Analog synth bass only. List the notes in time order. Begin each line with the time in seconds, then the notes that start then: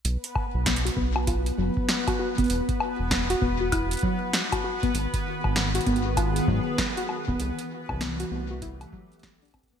0.05 B1
0.54 B1
0.97 B1
1.58 F#1
2.38 F#1
2.50 E1
2.99 E1
3.42 E1
4.95 G#1
5.44 G#1
5.87 G#1
6.48 G#2
7.28 D#1
7.40 C2
7.89 C2
8.31 C2